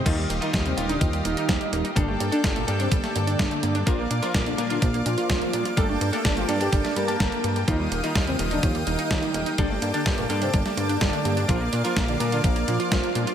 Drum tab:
CC |x---------------|----------------|----------------|----------------|
HH |x-xxxxxxxxxxxxxx|x-xxxxxxxxxxxxxx|x-xxxxxxxxxxxxxx|x-xxxxxxxxxxxxxx|
SD |----o-------o---|----o----o--o---|----o-------o---|----o----o--o---|
BD |o---o---o---o---|o---o---o---o---|o---o---o---o---|o---o---o---o---|

CC |----------------|----------------|----------------|
HH |x-xxxxxxxxxxxxxx|x-xxxxxxxxxxxxxx|x-xxxxxxxxxxxxxx|
SD |----o-------o---|----o----o--o---|----o-------o---|
BD |o---o---o---o---|o---o---o---o---|o---o---o---o---|